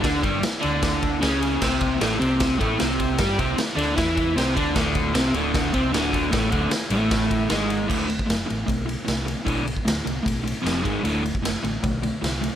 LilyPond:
<<
  \new Staff \with { instrumentName = "Overdriven electric guitar" } { \clef bass \time 4/4 \key c \lydian \tempo 4 = 153 <d d'>8 <g, g>8 r8 <d d'>4. <cis cis'>4 | <c c'>4 <a, a>8 <c c'>4 <a, a>8 <c c'>4 | <g g'>8 <c c'>8 r8 <d d'>8 <e e'>4 <c c'>8 <d d'>8 | <d, d>4 <c c'>8 <d, d>4 <c c'>8 <d, d>4 |
<a, a>8 <d, d>8 r8 <a, a>4. <gis, gis>4 | <d, a, d>8 <d, a,>8 <d, a,>8 <d, a,>8 <d, a,>8 <d, a,>8 <d, a,>8 <d, a,>8 | <d, a, d>8 <d, a,>8 <d, a,>8 <d, a,>8 <d, a,>8 <d, a,>8 <f, c f>8 <gis, dis gis>8 | <d, a, d>8 <d, a,>8 <d, a,>8 <d, a,>8 <d, a,>8 <d, a,>8 <d, a,>8 <d, a,>8 | }
  \new Staff \with { instrumentName = "Fingered electric bass" } { \clef bass \time 4/4 \key c \lydian d,8 g,,8 r8 d,4. cis,4 | c,4 a,,8 c,4 a,,8 c,4 | g,8 c,8 r8 d,8 e,4 c,8 d,8 | d,,4 c,8 d,,4 c,8 d,,4 |
a,,8 d,,8 r8 a,,4. gis,,4 | d,,4 fis,,8 a,,8 b,,4 c,4 | b,,4 d,8 c,8 b,,4 f,,8 gis,,8 | d,,4 fis,,8 a,,8 b,,4 c,4 | }
  \new DrumStaff \with { instrumentName = "Drums" } \drummode { \time 4/4 <bd cymr sn>8 <bd cymr>8 <cymr sn>8 cymr8 <bd cymr sn>8 <bd cymr>8 <cymr sn>8 cymr8 | <cymc bd sn>8 <bd cymr>8 <cymr sn>8 cymr8 <bd cymr sn>8 <bd cymr>8 <cymr sn>8 <bd cymr>8 | <bd cymr sn>8 <bd cymr>8 <cymr sn>8 cymr8 <bd cymr sn>8 <bd cymr>8 <cymr sn>8 <bd cymr>8 | <bd cymr sn>8 <bd cymr>8 <cymr sn>8 cymr8 <bd cymr sn>8 <bd cymr>8 <cymr sn>8 <bd cymr>8 |
<bd cymr sn>8 <bd cymr>8 <cymr sn>8 cymr8 <bd cymr sn>8 <bd cymr>8 <cymr sn>8 cymr8 | <cymc bd>8 cymr16 bd16 <cymr sn>8 cymr8 <bd cymr>8 cymr8 <cymr sn>8 cymr8 | <bd cymr>8 cymr16 bd16 <cymr sn>8 cymr8 <bd cymr>8 cymr8 <cymr sn>8 <bd cymr>8 | cymr8 cymr16 bd16 <cymr sn>8 cymr8 <bd cymr>8 cymr8 <cymr sn>8 cymr8 | }
>>